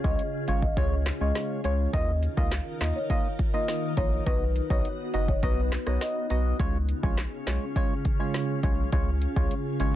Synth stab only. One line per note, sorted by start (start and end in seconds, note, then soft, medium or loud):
0.04 0.22 G#3 medium
0.04 0.22 C#4 medium
0.04 0.22 F4 medium
0.04 0.22 C#5 medium
0.48 0.66 G#3 medium
0.48 0.66 C#4 medium
0.48 0.66 F4 medium
0.48 0.66 C#5 medium
0.77 0.95 G#3 loud
0.77 0.95 C#4 medium
0.77 0.95 F4 medium
0.77 0.95 C#5 loud
1.21 1.61 G#3 medium
1.21 1.61 C#4 medium
1.21 1.61 F4 medium
1.21 1.61 C#5 medium
1.64 1.91 G#3 medium
1.64 1.91 C#4 medium
1.64 1.91 F4 medium
1.64 1.91 C#5 medium
1.93 2.11 A#3 loud
1.93 2.11 D#4 medium
1.93 2.11 F4 medium
1.93 2.12 D#5 loud
2.37 2.55 A#3 medium
2.37 2.55 D#4 medium
2.37 2.55 F4 medium
2.37 2.55 D#5 medium
2.81 2.99 A#3 medium
2.81 2.99 D#4 medium
2.81 2.99 F4 medium
2.81 2.99 D#5 medium
3.10 3.28 A#3 medium
3.10 3.28 D#4 medium
3.10 3.28 F4 medium
3.10 3.28 D#5 loud
3.54 3.94 A#3 medium
3.54 3.94 D#4 medium
3.54 3.94 F4 medium
3.54 3.94 D#5 medium
3.97 4.24 A#3 medium
3.97 4.24 D#4 medium
3.97 4.24 F4 medium
3.97 4.24 D#5 medium
4.26 4.44 B3 loud
4.26 4.44 D#4 medium
4.26 4.45 F#4 medium
4.26 4.45 D#5 loud
4.70 4.88 B3 medium
4.70 4.88 D#4 medium
4.70 4.88 F#4 medium
4.70 4.88 D#5 medium
5.14 5.32 B3 medium
5.14 5.32 D#4 medium
5.14 5.32 F#4 medium
5.14 5.32 D#5 medium
5.43 5.61 B3 medium
5.43 5.61 D#4 medium
5.43 5.61 F#4 medium
5.43 5.61 D#5 loud
5.86 6.27 B3 medium
5.86 6.27 D#4 medium
5.86 6.27 F#4 medium
5.86 6.27 D#5 medium
6.30 6.57 B3 medium
6.30 6.57 D#4 medium
6.30 6.57 F#4 medium
6.30 6.57 D#5 medium
6.59 6.77 G#3 medium
6.59 6.78 C#4 medium
6.59 6.78 F4 medium
6.59 6.78 C#5 loud
7.03 7.21 G#3 medium
7.03 7.21 C#4 medium
7.03 7.21 F4 medium
7.03 7.21 C#5 medium
7.47 7.65 G#3 medium
7.47 7.65 C#4 medium
7.47 7.65 F4 medium
7.47 7.65 C#5 medium
7.76 7.94 G#3 loud
7.76 7.94 C#4 medium
7.76 7.94 F4 medium
7.76 7.94 C#5 loud
8.19 8.60 G#3 medium
8.19 8.60 C#4 medium
8.19 8.60 F4 medium
8.19 8.60 C#5 medium
8.63 8.90 G#3 medium
8.63 8.90 C#4 medium
8.63 8.90 F4 medium
8.63 8.90 C#5 medium
8.92 9.10 G#3 loud
8.92 9.11 C#4 medium
8.92 9.11 F4 medium
8.92 9.11 C#5 loud
9.36 9.54 G#3 medium
9.36 9.54 C#4 medium
9.36 9.54 F4 medium
9.36 9.54 C#5 medium
9.80 9.96 G#3 medium
9.80 9.96 C#4 medium
9.80 9.96 F4 medium
9.80 9.96 C#5 medium